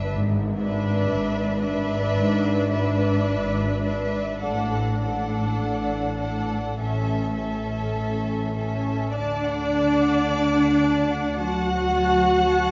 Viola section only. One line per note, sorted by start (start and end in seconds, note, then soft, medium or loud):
0.61 1.61 D4 medium
1.62 2.69 D4 medium
2.71 3.82 D4 medium
3.84 4.42 D4 medium
4.43 5.00 D4 medium
5.02 6.18 D4 medium
6.20 6.78 D4 medium
6.79 7.36 C#4 medium
7.37 8.54 C#4 medium
8.57 9.14 C#4 medium
9.16 11.35 D4 medium
11.38 12.71 F#4 medium